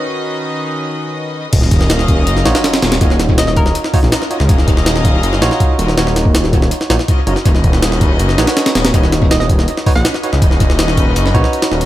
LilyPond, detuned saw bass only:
\new Staff \with { instrumentName = "Detuned saw bass" } { \clef bass \time 4/4 \key ees \minor \tempo 4 = 162 r1 | ees,,2 ges,,8 bes,,16 r8. ees,,8 | ees,,2 r8. bes,,16 r8. des,16 | ees,,2 ges,,8 bes,,16 r8. ees,,8 |
ees,,2 r8 bes,,16 r8. ges,,16 r16 | dis,,2 fis,,8 bes,,16 r8. dis,,8 | dis,,2 r8. bes,,16 r8. cis,16 | dis,,2 fis,,8 bes,,16 r8. dis,,8 | }